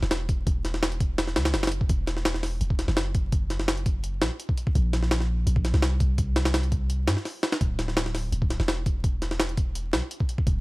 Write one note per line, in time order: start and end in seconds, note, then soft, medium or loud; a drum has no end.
0.02 0.45 E1 medium
0.02 snare soft
0.11 snare loud
0.11 closed hi-hat medium
0.29 kick loud
0.29 closed hi-hat medium
0.47 1.38 E1 medium
0.47 kick loud
0.47 closed hi-hat medium
0.65 snare soft
0.65 closed hi-hat medium
0.74 snare soft
0.83 snare loud
0.83 closed hi-hat medium
0.92 closed hi-hat soft
1.00 kick loud
1.00 closed hi-hat medium
1.18 snare loud
1.18 closed hi-hat medium
1.27 snare soft
1.36 1.55 C#2 medium
1.36 snare loud
1.36 closed hi-hat medium
1.45 snare loud
1.45 closed hi-hat medium
1.54 1.88 F#1 loud
1.54 snare loud
1.54 closed hi-hat medium
1.63 snare medium
1.63 closed hi-hat medium
1.67 snare medium
1.67 closed hi-hat medium
1.72 closed hi-hat medium
1.81 kick loud
1.89 2.60 E1 loud
1.89 kick loud
1.89 closed hi-hat medium
2.07 snare medium
2.07 closed hi-hat medium
2.17 snare soft
2.25 snare loud
2.25 closed hi-hat medium
2.34 snare soft
2.43 snare soft
2.43 open hi-hat medium
2.61 2.87 E1 medium
2.61 closed hi-hat medium
2.70 kick loud
2.79 snare soft
2.79 closed hi-hat medium
2.88 4.23 F#1 medium
2.88 snare soft
2.97 snare loud
2.97 closed hi-hat medium
3.15 kick loud
3.15 closed hi-hat medium
3.32 kick loud
3.32 closed hi-hat medium
3.50 snare soft
3.50 closed hi-hat medium
3.60 snare soft
3.68 snare loud
3.68 closed hi-hat medium
3.77 closed hi-hat soft
3.86 kick loud
3.86 closed hi-hat medium
4.04 closed hi-hat medium
4.22 4.30 A#1 medium
4.22 snare loud
4.22 closed hi-hat medium
4.40 closed hi-hat medium
4.49 kick loud
4.57 closed hi-hat medium
4.67 kick medium
4.75 5.45 A#1 loud
4.75 kick loud
4.75 closed hi-hat medium
4.93 snare medium
4.93 closed hi-hat medium
5.03 snare soft
5.11 snare loud
5.11 closed hi-hat medium
5.20 snare soft
5.47 5.72 A#1 medium
5.47 closed hi-hat medium
5.56 kick loud
5.65 snare soft
5.65 closed hi-hat medium
5.74 7.09 C2 medium
5.74 snare soft
5.82 snare loud
5.82 closed hi-hat medium
6.00 kick loud
6.00 closed hi-hat medium
6.18 kick loud
6.18 closed hi-hat medium
6.36 snare loud
6.36 closed hi-hat medium
6.45 snare loud
6.45 closed hi-hat medium
6.54 snare loud
6.54 closed hi-hat medium
6.63 closed hi-hat soft
6.72 kick loud
6.72 closed hi-hat medium
6.90 closed hi-hat medium
7.07 7.16 G2 medium
7.07 snare loud
7.07 closed hi-hat medium
7.17 snare soft
7.25 snare soft
7.25 open hi-hat medium
7.43 snare loud
7.43 closed hi-hat medium
7.52 snare loud
7.52 closed hi-hat medium
7.61 8.31 D1 loud
7.61 kick loud
7.61 closed hi-hat medium
7.79 snare medium
7.79 closed hi-hat medium
7.88 snare soft
7.97 snare loud
7.97 closed hi-hat medium
8.06 snare soft
8.15 snare soft
8.15 open hi-hat medium
8.32 8.58 D1 medium
8.32 closed hi-hat medium
8.42 kick loud
8.50 snare soft
8.50 closed hi-hat medium
8.60 9.95 E1 medium
8.60 snare soft
8.68 snare loud
8.68 closed hi-hat medium
8.86 kick loud
8.86 closed hi-hat medium
9.04 kick loud
9.04 closed hi-hat medium
9.22 snare soft
9.22 closed hi-hat medium
9.31 snare soft
9.40 snare loud
9.40 closed hi-hat medium
9.49 closed hi-hat soft
9.57 kick loud
9.57 closed hi-hat medium
9.75 closed hi-hat medium
9.93 10.02 B1 medium
9.93 snare loud
9.93 closed hi-hat medium
10.11 closed hi-hat medium
10.20 kick loud
10.29 closed hi-hat medium
10.38 kick medium
10.47 10.61 D1 loud
10.47 kick loud
10.47 closed hi-hat medium